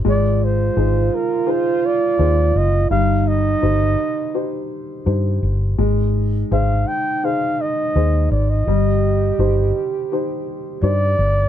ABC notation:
X:1
M:4/4
L:1/16
Q:1/4=84
K:Cm
V:1 name="Flugelhorn"
d2 c4 B2 c2 d4 e2 | f2 e8 z6 | z4 f2 g2 f2 e4 d e- | e6- e z4 z d4 |]
V:2 name="Grand piano"
A,4 [EAc]4 [EAc]4 [EAc]4 | G,4 [EGc]4 [EGc]4 [EGc]4 | A,4 [EAc]4 [EAc]4 [EAc]4 | G,4 [EGc]4 [EGc]4 [EGc]4 |]
V:3 name="French horn"
F16 | E12- E2 z2 | E16 | G12- G2 z2 |]
V:4 name="Fingered electric bass" clef=bass
A,,,4 A,,,2 z6 E,,2 ^F,,,2 | G,,,4 G,,,2 z6 G,,2 G,,,2 | A,,,4 A,,,2 z6 E,,2 A,,,2 | G,,,4 G,,,2 z6 G,,2 G,,,2 |]